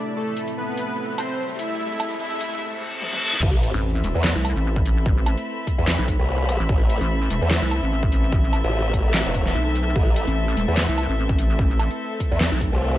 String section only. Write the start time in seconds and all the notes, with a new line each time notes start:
Already playing: A3 E4 E5 B5
3.43 C4
3.54 A4
3.88 E5
3.98 B5